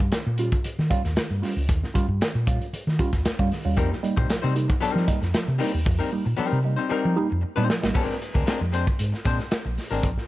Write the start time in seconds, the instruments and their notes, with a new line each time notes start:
0.00 fingered electric bass G2, kick
0.12 reed electric piano D#3, muted fingered electric bass stroke, snare, closed hi-hat
0.27 fingered electric bass A#2
0.38 reed electric piano G3 C#4 F4, closed hi-hat
0.52 reed electric piano C#4 F4, kick, closed hi-hat
0.64 muted fingered electric bass stroke, closed hi-hat
0.79 fingered electric bass D#3, snare
0.90 reed electric piano G3 C#4 F4, kick, closed hi-hat
1.04 fingered electric bass D#2, snare, closed hi-hat
1.16 reed electric piano D#3, muted fingered electric bass stroke, snare, closed hi-hat
1.30 fingered electric bass G2
1.42 reed electric piano G3 C#4 F4, snare, open hi-hat
1.56 fingered electric bass C#2
1.69 fingered electric bass D#2, reed electric piano D#3, kick, closed hi-hat
1.83 reed electric piano C#4 F4, snare
1.94 reed electric piano G3 C#4 F4, kick, closed hi-hat
2.08 fingered electric bass G2
2.21 reed electric piano D#3, muted fingered electric bass stroke, snare, closed hi-hat
2.35 fingered electric bass A#2
2.47 reed electric piano G3 C#4 F4, kick, closed hi-hat
2.60 reed electric piano C#4 F4, closed hi-hat
2.73 muted fingered electric bass stroke, closed hi-hat
2.87 fingered electric bass D#3, snare
2.99 reed electric piano G3 C#4 F4, kick, closed hi-hat
3.13 fingered electric bass D#2, kick, snare, closed hi-hat
3.25 muted fingered electric bass stroke, snare, closed hi-hat
3.39 fingered electric bass G2, reed electric piano G3 C#4 F4, kick
3.51 reed electric piano D#3, snare, open hi-hat
3.65 fingered electric bass D#2, reed electric piano G3 C#4 F4
3.77 fingered electric bass F2, reed electric piano F3, hollow-body jazz guitar G3 C4 D#4 A#4, kick, closed hi-hat
3.90 reed electric piano A#3 D#4, muted hollow-body jazz guitar stroke, snare
4.03 reed electric piano G3 A#3 D#4, muted hollow-body jazz guitar stroke, closed hi-hat
4.16 fingered electric bass A#2, hollow-body jazz guitar G3 C4 D#4 C5, kick
4.29 reed electric piano F3, muted hollow-body jazz guitar stroke, snare, closed hi-hat
4.42 fingered electric bass C3, hollow-body jazz guitar G3 C4 D#4 C5
4.55 reed electric piano G3 A#3 D#4, muted hollow-body jazz guitar stroke, closed hi-hat
4.68 reed electric piano A#3 D#4, muted hollow-body jazz guitar stroke, kick, closed hi-hat
4.80 hollow-body jazz guitar G3 C4 D#4 A#4, muted fingered electric bass stroke, closed hi-hat
4.95 fingered electric bass F3, snare
5.07 reed electric piano G3 A#3 D#4, muted hollow-body jazz guitar stroke, kick, closed hi-hat
5.21 fingered electric bass F2, muted hollow-body jazz guitar stroke, snare, closed hi-hat
5.34 reed electric piano F3, muted hollow-body jazz guitar stroke, muted fingered electric bass stroke, snare, closed hi-hat
5.47 fingered electric bass C3, muted hollow-body jazz guitar stroke
5.58 hollow-body jazz guitar G3 C4 D#4 A#4, reed electric piano G3 A#3 D#4, snare, open hi-hat
5.72 fingered electric bass D#2, reed electric piano A#3 D#4, muted hollow-body jazz guitar stroke
5.85 fingered electric bass F2, reed electric piano F3, muted hollow-body jazz guitar stroke, kick
5.99 hollow-body jazz guitar G3 C4 D#4 A#4, reed electric piano A#3 D#4
6.11 reed electric piano G3 A#3 D#4, muted hollow-body jazz guitar stroke
6.25 fingered electric bass A#2, muted hollow-body jazz guitar stroke
6.37 reed electric piano F3, hollow-body jazz guitar G3 C4 D#4 A#4, muted fingered electric bass stroke
6.53 fingered electric bass C3
6.63 reed electric piano G3 A#3 D#4, muted hollow-body jazz guitar stroke
6.76 hollow-body jazz guitar G3 C4 D#4 C5, reed electric piano A#3 D#4
6.89 hollow-body jazz guitar G3 C4 D#4 A#4, muted fingered electric bass stroke
7.05 fingered electric bass F3
7.16 reed electric piano G3 A#3 D#4, muted hollow-body jazz guitar stroke
7.30 fingered electric bass F2, muted hollow-body jazz guitar stroke
7.41 muted hollow-body jazz guitar stroke, muted fingered electric bass stroke
7.56 fingered electric bass A#2, reed electric piano G3 A#3 D#4, hollow-body jazz guitar G3 C4 D#4 C5
7.68 reed electric piano F3, muted hollow-body jazz guitar stroke, snare
7.82 fingered electric bass G#1, reed electric piano G3 A#3 D#4, muted hollow-body jazz guitar stroke, snare
7.94 fingered electric bass A#1, hollow-body jazz guitar G#3 C4 D4 A#4, kick, crash
8.09 snare
8.21 muted hollow-body jazz guitar stroke, closed hi-hat
8.34 fingered electric bass D2, hollow-body jazz guitar G#3 C4 D4 A#4, kick
8.46 hollow-body jazz guitar G#3 C4 D4 A#4, muted fingered electric bass stroke, snare, closed hi-hat
8.61 fingered electric bass F2, muted hollow-body jazz guitar stroke
8.72 hollow-body jazz guitar G#3 C4 D4 C5, closed hi-hat
8.87 muted hollow-body jazz guitar stroke, kick
8.99 fingered electric bass G#2, closed hi-hat
9.12 muted hollow-body jazz guitar stroke, snare
9.25 fingered electric bass A#2, hollow-body jazz guitar G#3 C4 D4 C5, kick, closed hi-hat
9.39 muted hollow-body jazz guitar stroke, snare, closed hi-hat
9.51 muted hollow-body jazz guitar stroke, muted fingered electric bass stroke, snare, closed hi-hat
9.65 fingered electric bass A#1, muted hollow-body jazz guitar stroke
9.78 snare, open hi-hat
9.91 fingered electric bass G#1, hollow-body jazz guitar G#3 C4 D4 A#4
10.03 fingered electric bass A#1, kick, closed hi-hat
10.18 snare